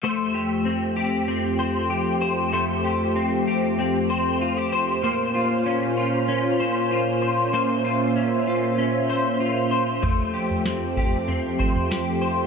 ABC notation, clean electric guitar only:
X:1
M:4/4
L:1/16
Q:1/4=96
K:F
V:1 name="Clean electric guitar"
[A,c]2 G2 C2 G2 C2 c2 G2 c2 | [A,c]2 G2 C2 G2 C2 c2 F G c2 | [B,c]2 F2 _D2 F2 D2 c2 F2 c2 | [B,c]2 F2 _D2 F2 D2 c2 F2 c2 |
[A,c]2 G2 C2 G2 C2 c2 G2 c2 |]